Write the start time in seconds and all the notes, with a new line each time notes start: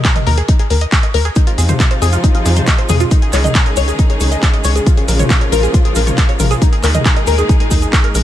0.05 G#5, kick, clap, closed hi-hat
0.16 D#5, closed hi-hat, mid tom
0.27 D#2 A#4, open hi-hat
0.38 G#4, closed hi-hat
0.48 D#4, kick, closed hi-hat
0.59 G#4, closed hi-hat
0.70 D#2 A#4, open hi-hat
0.81 D#5, closed hi-hat
0.92 G#5, kick, clap, closed hi-hat
1.03 D#5, closed hi-hat
1.14 D#2 A#4, open hi-hat
1.25 G#4, closed hi-hat
1.35 C3 F3 G#3 D#4 F4, kick, closed hi-hat, shaker
1.47 F4, closed hi-hat
1.58 F2 G#4, open hi-hat, shaker
1.69 C5, closed hi-hat, mid tom, shaker
1.80 D#5, kick, clap, closed hi-hat, shaker
1.91 C5, closed hi-hat
2.02 F2 G#4, open hi-hat, shaker
2.12 F4, closed hi-hat, shaker
2.24 D#4, kick, closed hi-hat, shaker
2.35 F4, closed hi-hat
2.46 F2 G#4, open hi-hat, shaker
2.56 C5, closed hi-hat, mid tom, shaker
2.67 D#5, kick, clap, closed hi-hat, shaker
2.78 C5, closed hi-hat
2.89 F2 G#4, open hi-hat, mid tom, shaker
3.00 F4, closed hi-hat, shaker
3.11 C#3 D#3 D#4 G#4, kick, closed hi-hat, shaker
3.22 G#4, closed hi-hat
3.33 C#2 C#5, clap, open hi-hat, shaker
3.44 D#5, closed hi-hat, mid tom, shaker
3.55 G#5, kick, clap, closed hi-hat, shaker
3.66 D#5, closed hi-hat
3.76 C#2 C#5, open hi-hat, shaker
3.88 G#4, closed hi-hat, shaker
3.99 D#4, kick, closed hi-hat, shaker
4.10 G#4, closed hi-hat
4.20 C#2 C#5, open hi-hat, shaker
4.32 D#5, closed hi-hat, shaker
4.43 G#5, kick, clap, closed hi-hat, shaker
4.54 D#5, closed hi-hat
4.64 C#2 C#5, open hi-hat, shaker
4.76 G#4, closed hi-hat, shaker
4.86 F3 A#3 F4, kick, closed hi-hat, shaker
4.97 G#4, closed hi-hat
5.08 A#1 A#4, open hi-hat, shaker
5.19 C#5, closed hi-hat, mid tom, shaker
5.30 F5, kick, clap, closed hi-hat, shaker
5.41 C#5, closed hi-hat
5.52 A#1 A#4, open hi-hat, shaker
5.63 G#4, closed hi-hat, shaker
5.74 F4, kick, closed hi-hat, shaker
5.85 G#4, closed hi-hat
5.95 A#1 A#4, open hi-hat, shaker
6.07 C#5, closed hi-hat, mid tom, shaker
6.18 F5, kick, clap, closed hi-hat, shaker
6.29 C#5, closed hi-hat
6.40 A#1 A#4, open hi-hat, mid tom, shaker
6.51 G#4, closed hi-hat, shaker
6.62 A#2 D#3 G#3 D#4 G#4, kick, closed hi-hat, shaker
6.73 G#4, closed hi-hat
6.83 D#2 A#4, clap, open hi-hat, shaker
6.94 D#5, closed hi-hat, mid tom, shaker
7.05 G#5, kick, clap, closed hi-hat, shaker
7.16 D#5, closed hi-hat
7.27 D#2 A#4, open hi-hat, shaker
7.38 G#4, closed hi-hat, shaker
7.49 D#4, kick, closed hi-hat, shaker
7.60 G#4, closed hi-hat
7.71 D#2 D#4, kick, open hi-hat, shaker
7.82 G#4, closed hi-hat, shaker
7.93 A#4, kick, clap, closed hi-hat, shaker
8.04 A#4, closed hi-hat
8.15 A#1 A#4, open hi-hat, shaker